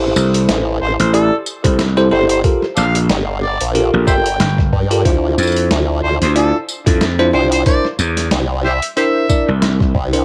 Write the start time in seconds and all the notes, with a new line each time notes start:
Already playing: A1 E4 G4 A4 C5
0.16 C2, tambourine
0.34 closed hi-hat
0.48 A1, snare, closed hi-hat
0.81 A1 C5
1.00 A1 C5, closed hi-hat
1.14 E4 G4 A4 D5, closed hi-hat
1.46 tambourine
1.64 C2 E4 G4 A4 C5, kick, closed hi-hat
1.79 snare, closed hi-hat
1.97 E4 G4 A4 C5, snare
2.11 G1 E4 G4 A4 C5
2.29 C5, closed hi-hat
2.44 F4 G4 A4 A#4, kick, closed hi-hat
2.62 snare
2.76 A#1 A4 D5 F5, tambourine
2.95 snare, closed hi-hat
3.10 G1, snare, closed hi-hat
3.42 D5
3.61 A#1, closed hi-hat
3.75 F4 G4 A4 A#4, closed hi-hat
3.94 A#1
4.07 G1 F4 G4 A4 A#4 C5 E5 G5, kick, tambourine
4.26 closed hi-hat
4.40 G1, snare, closed hi-hat
4.58 kick, snare
4.73 G2, kick
4.91 F4 G4 A4 A#4, closed hi-hat
5.05 D2 D4 E4 F4 C5, kick, closed hi-hat
5.38 F2, tambourine
5.43 tambourine
5.47 tambourine
5.52 tambourine
5.56 closed hi-hat
5.71 D2, snare, closed hi-hat
6.03 D2 C5
6.22 D2 C5, closed hi-hat
6.36 D4 E4 F4 A4 D5, closed hi-hat
6.69 tambourine
6.86 F2 D4 E4 F4 A4, kick, closed hi-hat
7.01 snare, closed hi-hat
7.19 D4 E4 F4 C5, snare
7.33 C2 D4 E4 F4 C5
7.52 C5, closed hi-hat
7.66 D4 E4 A#4 C5 D5, kick, closed hi-hat
7.85 snare
7.99 E2, tambourine
8.17 snare, closed hi-hat
8.31 C2, snare, closed hi-hat
8.64 G4 C5 E5
8.82 closed hi-hat
8.97 D4 E4 G4 A#4 C5 E5, closed hi-hat
9.29 D4 E4 A#4 D5, kick, tambourine
9.48 C2
9.62 snare, closed hi-hat
9.80 kick, snare
9.95 C2, kick
10.13 D4 E4 A#4 C5, closed hi-hat